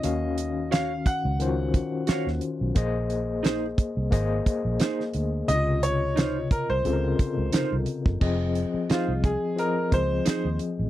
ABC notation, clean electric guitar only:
X:1
M:4/4
L:1/8
Q:"Swing 16ths" 1/4=88
K:Fphr
V:1 name="Clean electric guitar"
z2 [Gdf] z3 [Gdf] z | z2 [EAc] z3 [EAc] z | z2 [EFc] z3 [EFc] z | z2 [EAc] z3 [EAc] z |]